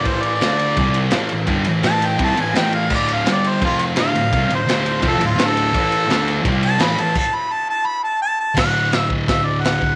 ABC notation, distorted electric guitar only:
X:1
M:4/4
L:1/8
Q:1/4=169
K:Amix
V:1 name="Distorted electric guitar" clef=bass
[A,,E,A,]2 [D,A,D]2 [=C,G,=C]2 [A,,E,A,] [A,,E,] | [G,,D,G,] [A,,E,] [A,,E,A,]2 [=C,G,=C] [A,,E,] [A,,E,A,]2 | [D,,A,,D,]2 [G,,D,G,]2 [=F,,=C,=F,]2 [D,,A,,D,] [D,,A,,] | [=C,G,=C] [D,,A,,] [D,,A,,D,]2 [=F,,C,=F,] [D,,A,,] [D,,A,,D,]2 |
[A,,E,A,]2 [D,A,D]2 [=C,G,=C]2 [A,,E,A,] [A,,E,] | z8 | [K:D] [D,,A,,D,]8 |]